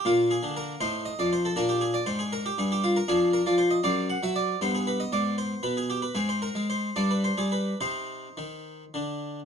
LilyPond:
<<
  \new Staff \with { instrumentName = "Harpsichord" } { \time 6/8 \key bes \mixolydian \tempo 4. = 78 << { f'8 aes'8 bes'8 c''8 ees''16 d''16 c''16 a'16 | bes'16 g'16 aes'16 d''16 c''16 aes'16 bes'16 g'16 aes'16 g'16 f'16 bes'16 | \key c \minor aes'8 bes'16 d''16 c''16 ees''16 d''8 fis''16 e''16 d''8 | c''16 aes'16 b'16 ees''16 d''8 c''8 b'16 aes'16 g'16 b'16 |
aes'16 c''16 bes'8 c''8 d''16 b'16 c''16 aes'16 b'8 | c''2~ c''8 r8 | } \\ { bes4. ees'4. | d'2. | d'4. c'4. | b2. |
c'4. d'4. | ees'2. | } >> }
  \new Staff \with { instrumentName = "Harpsichord" } { \clef bass \time 6/8 \key bes \mixolydian bes,8. d8. a,8. f,8. | bes,4 aes,4 g,4 | \key c \minor f,8. f8. fis,8. fis8. | g,4 aes,4 b,4 |
aes,8. aes8. g,8. g8. | c4 ees4 d4 | }
>>